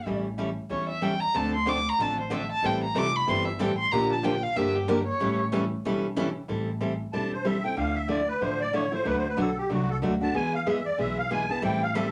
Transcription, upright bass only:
0.06 0.57 A1 medium
0.70 1.22 E2 medium
1.34 1.86 D2 medium
1.99 2.50 A1 medium
2.63 2.89 A1 medium
2.95 3.23 F1 medium
3.28 3.55 G1 medium
3.59 3.87 A1 medium
3.93 4.44 A#1 medium
4.56 5.08 G2 medium
5.21 5.72 A1 medium
5.85 6.37 E1 medium
6.49 7.01 A1 medium
7.13 7.65 E1 medium
7.77 8.29 D2 medium
8.41 8.93 A1 medium
9.06 9.32 D2 medium
9.38 9.66 B1 medium
9.70 9.98 C2 medium
10.02 10.30 D2 medium
10.34 10.86 E2 medium
10.98 11.50 B1 medium
11.63 12.12 A1 medium

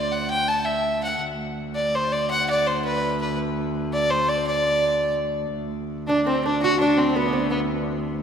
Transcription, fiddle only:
0.00 0.13 D5 medium
0.12 0.29 F#5 medium
0.30 0.50 G5 medium
0.48 0.67 A5 medium
0.65 1.03 E5 medium
1.03 1.20 F#5 medium
1.75 1.96 D5 medium
1.95 2.14 C5 medium
2.12 2.30 D5 medium
2.30 2.47 F#5 medium
2.50 2.68 D5 medium
2.66 2.84 C5 medium
2.85 3.18 B4 medium
3.21 3.37 B4 medium
3.93 4.12 D5 medium
4.11 4.30 C5 medium
4.28 4.46 D5 medium
4.47 5.15 D5 medium
6.07 6.24 D4 medium
6.26 6.43 C4 medium
6.45 6.61 D4 medium
6.62 6.79 F#4 medium
6.80 6.99 D4 medium
6.98 7.16 C4 medium
7.15 7.50 B3 medium
7.51 7.59 B3 medium

